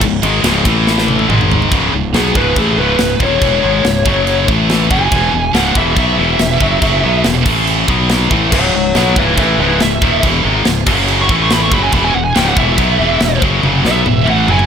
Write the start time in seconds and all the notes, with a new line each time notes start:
0.01 C#1 C#2 G#2, kick, ride
0.23 G#1 G#2 D#3 G#3, ride
0.43 C#1 C#2 G#2 C#3, snare, ride
0.65 A1 A2 E3 A3, kick, ride
0.87 snare
0.98 snare
1.08 high tom
1.19 high tom
1.28 G#1 G#2 D#3 G#3, mid tom
1.41 mid tom
1.52 floor tom
1.62 floor tom
1.72 C#1 C#2 G#2 C#3, kick, china
1.93 C#1 C#2 G#2
2.14 B1 B2 F#3 B3 G#4, snare, china
2.35 C#1 C#2 G#2 C#3 B4, kick
2.56 A1 A2 E3 A3 G#4, kick, china
2.78 C#1 C#2 G#2 C#3 B4
2.99 C#1 C#2 G#2, snare, china
3.20 D#1 D#2 A#2 D#3 C#5, kick
3.41 E1 E2 B2 E3, kick, china
3.63 G#1 G#2 D#3 G#3
3.84 C#1 C#2 G#2, snare, china
4.06 F#1 F#2 C#3 F#3, kick
4.27 china
4.48 A1 A2 E3 A3, kick
4.70 snare, china
4.90 F#1 F#2 C#3 F#3 G#5, kick
5.11 E1 E2 B2 E3, kick, china
5.33 E1 E2 B2
5.54 C#1 C#2 G#2 C#3 F#5, snare, china
5.75 E1 E2 B2 E3 E5, kick
5.96 B1 B2 F#3 B3 E5, kick, china
6.18 E1 E2 B2 E3
6.39 E1 E2 B2, snare, china
6.61 F#1 F#2 C#3 F#3, kick
6.82 F#1 F#2 C#3 F#3, kick, china
7.04 B1 B2 F#3 B3
7.24 E1 E2 B2, snare, china
7.45 A1 A2 E3 A3, kick, crash
7.67 china
7.88 B1 B2 F#3 B3, kick
8.09 snare, china
8.30 A1 A2 E3 A3, kick
8.51 C#1 C#2 G#2 C#3 C#5 F#5, kick, crash, china
8.74 C#1 C#2 G#2 C#5 F#5
8.95 B1 B2 F#3 B3 C#5 F#5, snare, china
9.16 C#1 C#2 G#2 C#3 B4 E5, kick
9.38 A1 A2 E3 A3 B4 E5, kick, china
9.59 C#1 C#2 G#2 C#3 B4 E5
9.80 C#1 C#2 G#2 E5, snare, china
10.02 D#1 D#2 A#2 D#3, kick
10.23 E1 E2 B2 E3, kick, china
10.44 G#1 G#2 D#3 G#3
10.65 C#1 C#2 G#2, snare, china
10.86 F#1 F#2 C#3 F#3, kick, crash
11.08 china
11.21 C#6
11.29 A1 A2 E3 A3, kick
11.42 C#6
11.50 B5, snare, china
11.63 C#6
11.72 F#1 F#2 C#3 F#3 B5, kick
11.84 G#5
11.92 E1 E2 B2 E3 B5, kick, china
12.04 G#5
12.15 E1 E2 B2 F#5
12.25 G#5
12.35 C#1 C#2 G#2 C#3 G5, snare, china
12.47 F#5
12.56 E1 E2 B2 E3 E5, kick
12.77 B1 B2 F#3 B3, kick, china
13.00 E1 E2 B2 E3
13.20 E1 E2 B2, snare, china
13.42 F#1 F#2 C#3 F#3, kick
13.62 F#1 F#2 C#3 F#3, high tom
13.82 B1 B2 F#3 B3, snare
13.87 E5
14.05 E1 E2 B2, mid tom
14.25 A1 A2 E3 A3, mid tom
14.30 F#5
14.47 F#1 F#2 C#3 F#3 G#5, mid tom
14.59 mid tom